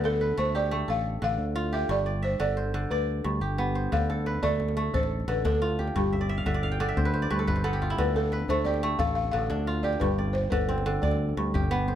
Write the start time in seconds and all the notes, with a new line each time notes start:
Already playing: D2 D3 B3 G4 C5
0.04 A4
0.21 B4
0.37 D2 A3 C5
0.55 G4 D5
0.71 A3
0.88 A1 A4 F5
1.22 A1 D3 F5
1.38 D2
1.56 F4
1.73 G4 E5
1.89 G1 G2 D5
2.06 D5
2.22 C5 E5
2.40 G1 D3 D5
2.57 C5
2.74 D3
2.91 D2 B4 D5
3.24 D2 G2
3.41 G1 G4
3.58 B3
3.75 C5
3.92 D2 D3 F5, djembe bass
4.10 A4, djembe tone
4.26 B4, djembe slap
4.35 djembe tone
4.43 D2 A3 D5, djembe slap, djembe bass
4.60 djembe slap, djembe tone
4.68 djembe slap
4.77 A3
4.86 djembe slap
4.94 A1 A4 C5, djembe tone, djembe bass
5.03 djembe slap
5.20 djembe tone
5.28 A1 D3 B4
5.45 D2 D4 A4, djembe slap, djembe bass
5.54 djembe tone
5.62 F4
5.79 G4, djembe slap, djembe tone
5.87 djembe slap
5.96 G1 G2 G4, djembe bass
6.13 E5, djembe tone
6.21 D5
6.29 E5, djembe slap
6.37 F5, djembe tone
6.46 G1 D3 E5, djembe slap, djembe bass
6.54 D5
6.63 F5, djembe slap, djembe tone
6.72 G5, djembe slap
6.80 D3 D5, djembe slap
6.89 E5, djembe slap
6.97 D2 C5, djembe tone, djembe bass
7.05 B4, djembe slap
7.14 C5
7.22 D5, djembe tone
7.30 D2 G2 B4
7.39 A4
7.47 G1 B4, djembe slap, djembe bass
7.56 C5, djembe tone
7.64 B3 A4
7.73 G4
7.81 F4, djembe slap, djembe tone
7.90 E4, djembe slap
7.98 D2 D3 B4, djembe bass
8.14 A4, djembe tone
8.32 B4, djembe slap
8.40 djembe tone
8.48 D2 A3 C5, djembe slap, djembe bass
8.65 G4 D5, djembe slap, djembe tone
8.74 djembe slap
8.83 A3
8.91 djembe slap
8.99 A1 A4 F5, djembe tone, djembe bass
9.08 djembe slap
9.15 F5
9.24 djembe tone
9.32 A1 D3 F5
9.50 D2 D4, djembe slap, djembe bass
9.58 djembe tone
9.67 F4
9.83 G4 D5, djembe slap, djembe tone
9.93 djembe slap
10.00 G1 G2 B4, djembe slap, djembe bass
10.10 djembe slap
10.18 D5, djembe tone
10.27 djembe slap
10.33 C5, djembe slap
10.43 djembe tone
10.50 G1 D3 B4, djembe bass
10.69 C4, djembe tone
10.78 djembe slap
10.86 D3
11.02 D2 D5, djembe slap, djembe tone, djembe bass
11.11 djembe slap
11.20 djembe slap
11.29 djembe tone
11.37 D2 G2, djembe slap
11.47 djembe slap
11.54 G1 G4, djembe slap, djembe bass
11.63 djembe tone
11.71 B3
11.88 C5, djembe tone